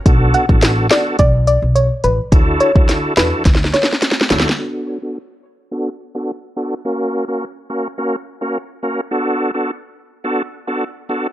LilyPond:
<<
  \new Staff \with { instrumentName = "Synth pluck" } { \time 4/4 \key b \minor \tempo 4 = 106 r8 fis''16 r8. d''16 r16 d''16 r16 d''16 r16 cis''16 r16 b'16 r16 | r8 cis''16 r8. b'16 r8. cis''16 r4 r16 | r1 | r1 |
r1 | }
  \new Staff \with { instrumentName = "Tonewheel organ" } { \time 4/4 \key b \minor <b d' fis' a'>8. <b d' fis' a'>8. <b d' fis' a'>8 r2 | <d' e' fis' a'>8. <d' e' fis' a'>8. <d' e' fis' a'>8 r4. <d' e' fis' a'>16 r16 | <b d' fis' a'>8. <b d' fis' a'>16 r4 <b d' fis' a'>16 r8 <b d' fis' a'>16 r8 <b d' fis' a'>16 r16 | <ais cis' fis' ais'>8. <ais cis' fis' ais'>16 r8 <ais cis' fis' ais'>16 r16 <ais cis' fis' ais'>16 r8 <ais cis' fis' ais'>16 r8 <ais cis' fis' ais'>16 r16 |
<b d' fis' a'>8. <b d' fis' a'>16 r4 <b d' fis' a'>16 r8 <b d' fis' a'>16 r8 <b d' fis' a'>16 r16 | }
  \new Staff \with { instrumentName = "Upright bass" } { \clef bass \time 4/4 \key b \minor b,,8 r16 a,,8. r8 b,,8. b,,8 r16 a,,16 r16 | d,8 r16 d,8 r16 e,16 r16 d,8 r4 d,16 r16 | r1 | r1 |
r1 | }
  \new DrumStaff \with { instrumentName = "Drums" } \drummode { \time 4/4 <hh bd>8 hh16 bd16 <hh sn>8 <hh sn>8 <hh bd>8 hh8 hh8 hh8 | <hh bd>8 hh16 bd16 <hh sn>8 <hh sn>8 \tuplet 3/2 { <hh bd sn>16 sn16 sn16 <hh sn>16 sn16 sn16 <hh sn>16 sn16 sn16 <hh sn>16 sn16 sn16 } | r4 r4 r4 r4 | r4 r4 r4 r4 |
r4 r4 r4 r4 | }
>>